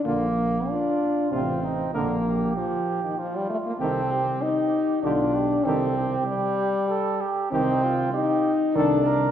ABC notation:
X:1
M:3/4
L:1/16
Q:1/4=97
K:Bb
V:1 name="Cornet"
F2 z6 F2 z2 | B2 z8 z2 | G2 z6 G2 z2 | G2 z8 z2 |
[K:Cdor] G2 z6 A2 z2 |]
V:2 name="Trumpet"
z4 F4 F2 E2 | D2 G6 F4 | A2 G6 F2 G2 | A2 G6 A2 G2 |
[K:Cdor] E2 F2 G2 z2 A2 B2 |]
V:3 name="French horn"
B,4 D4 C4 | B,4 F,3 E, F, G, A, B, | C4 E4 D4 | C4 G,6 z2 |
[K:Cdor] C4 E4 D4 |]
V:4 name="Trombone" clef=bass
D,2 z6 C,2 z2 | D,2 z8 z2 | E,2 z6 D,2 z2 | E,2 z8 z2 |
[K:Cdor] E,2 z6 E,2 z2 |]
V:5 name="Tuba" clef=bass
B,,,4 z4 A,,,4 | B,,,4 z8 | C,,4 z4 =B,,,4 | C,,4 z8 |
[K:Cdor] C,,4 z4 C,,4 |]